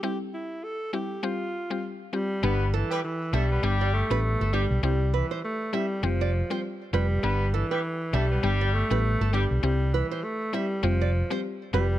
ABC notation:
X:1
M:4/4
L:1/16
Q:"Swing 16ths" 1/4=100
K:Gmix
V:1 name="Nylon-string guitar"
z16 | z2 A B z2 e z2 d z B z A G z | z2 B c z2 e z2 d z c z2 B z | z2 A B z2 e z2 d z B z A G z |
z2 B c z2 e z2 d z c z2 B z |]
V:2 name="Horn section"
z16 | [B,B]2 z [G,G] z2 [A,A] [B,B] [G,G]3 z3 [G,G] z | z16 | [B,B]2 z [G,G] z2 [A,A] [B,B] [G,G]3 z3 [G,G] z |
z16 |]
V:3 name="Synth pluck"
[G,CEG]4 z2 [G,CEG] z [G,CFG] z2 [G,CFG]3 [G,CFG]2 | [G,B,DG]4 z2 [G,B,DG] z [G,B,DG] z2 [G,B,DG]3 [G,B,DG]2 | [G,CEG]4 z2 [G,CEG] z [G,CFG] z2 [G,CFG]3 [G,CFG]2 | [G,B,DG]4 z2 [G,B,DG] z [G,B,DG] z2 [G,B,DG]3 [G,B,DG]2 |
[G,CEG]4 z2 [G,CEG] z [G,CFG] z2 [G,CFG]3 [G,CFG]2 |]
V:4 name="Alto saxophone" clef=bass
G2 E2 A2 G2 F4 z2 G,2- | G,2 E,2 E,2 G,4 A,4 G,2 | G,2 E,2 A,2 G,2 F,4 z2 G,2- | G,2 E,4 G,4 A,4 G,2 |
G,2 E,2 A,2 G,2 F,4 z2 G,2 |]
V:5 name="Fingered electric bass" clef=bass
z16 | G,,,3 z3 B,,,2 G,,,3 A,,,2 G,,,2 B,,, | C,,3 z4 z F,,,3 z3 F,,,2 | G,,,3 z3 B,,,2 G,,,3 A,,,2 G,,,2 B,,, |
C,,3 z4 z F,,,3 z3 F,,,2 |]